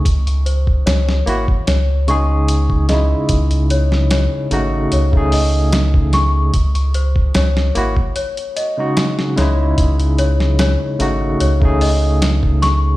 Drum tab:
HH |xxx-x-x-x-x-x-x-|xxx-x-x-x-o-x-x-|xxx-x-x-xxx-x-x-|xxx-x-x-x-o-x-x-|
SD |----oo--o-----o-|---oo-------o-o-|----oo------ooo-|---oo-------o-o-|
BD |o--o---o-----o--|o--------o---o--|o--o---o--------|o--------o---o--|